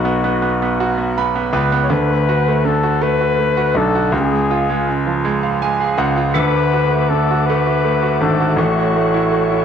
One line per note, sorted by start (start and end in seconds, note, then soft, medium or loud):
0.00 1.49 B1 medium
0.00 0.05 B3 soft
0.00 1.16 F#4 medium
0.05 0.23 B3 medium
0.25 0.41 B3 medium
0.43 0.61 B3 medium
0.63 0.96 B3 medium
0.81 1.88 F#4 medium
0.98 1.16 B3 soft
1.18 1.34 B3 medium
1.18 1.51 B5 medium
1.35 1.52 B3 medium
1.53 1.88 C#2 medium
1.53 1.71 B3 medium
1.53 1.88 B4 medium
1.72 1.90 B3 medium
1.84 1.92 C#5 medium
1.90 3.71 D2 medium
1.90 2.63 D3 medium
1.90 2.67 B4 loud
2.09 2.46 A3 soft
2.29 2.82 F#4 medium
2.48 3.00 A3 medium
2.65 3.75 D3 medium
2.65 3.04 A4 medium
2.83 3.19 F#4 medium
3.01 3.37 A3 medium
3.01 3.79 B4 loud
3.21 3.56 F#4 medium
3.39 4.10 A3 medium
3.57 3.94 F#4 medium
3.75 4.10 B1 medium
3.75 4.12 D3 medium
3.75 4.13 A4 medium
3.95 4.13 F#4 medium
4.12 5.94 C#2 loud
4.12 4.87 C#3 medium
4.12 4.93 G#4 medium
4.32 4.68 G#3 soft
4.51 5.95 F4 medium
4.70 5.23 G#3 medium
4.88 5.96 C#3 medium
5.07 6.32 F3 soft
5.25 5.60 G#3 medium
5.43 6.33 F5 medium
5.62 6.33 G#3 medium
5.62 5.96 G#5 medium
5.80 6.34 G#4 medium
5.98 6.33 C#2 medium
5.98 6.34 C#3 medium
5.98 6.32 F#5 medium
6.17 6.35 F4 medium
6.34 8.17 D2 medium
6.34 7.09 D3 medium
6.34 9.65 A4 medium
6.34 7.11 B4 loud
6.34 9.65 E5 medium
6.34 8.55 F#5 medium
6.34 8.55 D6 medium
6.54 6.90 A3 soft
6.73 7.29 F#4 medium
6.92 7.48 A3 medium
7.09 8.21 D3 medium
7.09 7.47 A4 medium
7.31 7.65 F#4 medium
7.46 7.83 A3 medium
7.46 8.20 B4 loud
7.66 8.01 F#4 soft
7.84 8.56 A3 medium
8.02 8.39 F#4 medium
8.21 8.55 G#1 loud
8.21 8.57 D3 medium
8.21 8.60 A4 medium
8.40 8.58 F#4 medium
8.56 9.65 A1 medium
8.56 8.94 A3 medium
8.56 9.65 F#4 medium
8.56 9.65 C#5 medium
8.56 9.65 C#6 medium
8.78 9.12 E4 soft
8.96 9.30 A3 medium
9.14 9.49 E4 medium
9.32 9.65 A3 medium
9.51 9.65 E4 medium